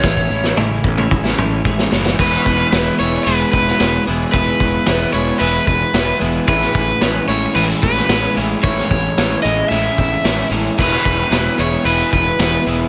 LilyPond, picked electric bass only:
\new Staff \with { instrumentName = "Picked electric bass" } { \clef bass \time 4/4 \key e \major \tempo 4 = 112 a,,8 a,,8 a,,8 a,,8 a,,8 a,,8 a,,8 fis,,8 | e,,8 e,,8 e,,8 e,,8 e,,8 e,,8 e,,8 e,,8 | e,,8 e,,8 e,,8 e,,8 e,,8 e,,8 e,,8 e,,8 | a,,8 a,,8 a,,8 a,,8 a,,8 a,,8 a,,8 a,,8 |
a,,8 a,,8 a,,8 a,,8 a,,8 a,,8 a,,8 a,,8 | e,,8 e,,8 e,,8 e,,8 e,,8 e,,8 e,,8 e,,8 | }